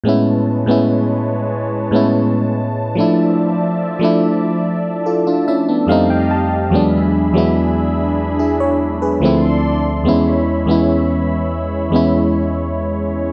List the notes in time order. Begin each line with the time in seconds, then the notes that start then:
0.04 A2 G#3 B3 C#4 B4 C#5 A5
0.09 E4
0.66 A2 G#3 B3 C#4
0.71 E4
1.91 A2 G#3 B3 C#4
1.96 E4
2.95 F3 A3 D4 D5 E5
3.00 E4
3.99 F3 A3 D4
4.04 E4
5.06 F4 A4
5.27 D4 F4
5.48 C#4 E4 E5
5.68 B3 D4
5.87 F2 G3 A3 C4 G4 D#5 F5
5.92 D#4
6.10 G5
6.31 A5
6.70 E2 F#3 G#3 B3 D4 G#4 E5 B5
6.75 D4
7.33 E2 F#3 G#3 B3
7.38 E4
8.39 E4 G#4
8.60 C#5
9.02 G#4 B4
9.20 D2 F3 A3 C4 A4 D5 C6
9.25 E4
10.04 E2 E3 G#3 B3 C#4 C#5 E5 B5
10.09 E4
10.66 E2 G#3 B3 C#4
10.71 E4
11.91 E2 G#3 B3 C#4
11.96 E4